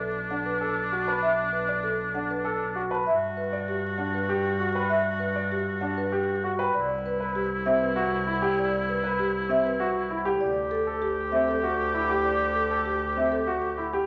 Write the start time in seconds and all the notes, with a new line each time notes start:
Already playing: B1 D4
0.00 A4
0.31 D4 F#5
0.46 B4
0.61 A4
0.92 F#4
1.07 B4 A5
1.22 E5
1.52 B4
1.68 D5
1.84 A4
2.14 D4 F#5
2.30 B4
2.45 A4
2.75 F#4
2.91 B4 A5
3.06 G2 F#4 E5
3.37 B4
3.53 D5
3.68 G4
3.98 D4 F#5
4.14 B4
4.29 G4
4.60 F#4
4.74 B4 G5
4.89 E5
5.20 B4
5.36 D5
5.52 G4
5.81 D4 F#5
5.97 B4
6.12 G4
6.44 F#4
6.59 B4 G5
6.74 C2 E4 D5
7.06 B4
7.20 B4
7.36 G4
7.66 C4 E5
7.82 B4
7.96 F#4
8.27 E4
8.42 G4 F#5
8.58 D5
8.89 B4
9.04 B4
9.19 G4
9.49 C4 E5
9.65 B4
9.80 F#4
10.10 E4
10.25 G4 F#5
10.41 D2 G4 D5
10.71 A4
10.87 A4
11.02 G4
11.32 C4 E5
11.48 A4
11.63 F#4
11.94 E4
12.09 G4 F#5
12.25 D5
12.55 A4
12.71 A4
12.86 G4
13.17 C4 E5
13.32 A4
13.47 F#4
13.77 E4
13.93 G4 F#5